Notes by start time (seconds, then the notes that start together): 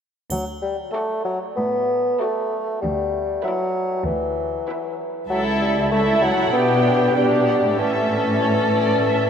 0.30 D2 F#3, triangle
0.62 G3
0.92 A3 F#4 A4 D5
1.25 F#3
1.56 A2 B3
2.20 A3 F#4 A4 D5
2.81 D2 G3
3.44 F#3 E4 B4 E5
4.06 D2 E3
4.68 E4 B4 E5
5.29 C#2 F#3 E4 A4 E5
5.61 G3
5.91 A3 E4 A4 E5
6.22 F#3 F#5
6.53 B2 B3 D4 G4 G5
7.16 G3 D4 G4 G5
7.48 F#5
7.79 A2 E3 C#4 A4 E5
8.41 C#5
8.74 D5
9.06 E5